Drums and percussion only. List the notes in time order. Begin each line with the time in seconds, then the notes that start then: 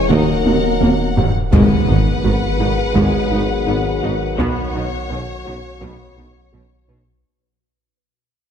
0.10 taiko
0.46 taiko high
0.81 taiko high
1.17 taiko low
1.53 taiko
2.95 taiko
4.39 taiko
5.81 taiko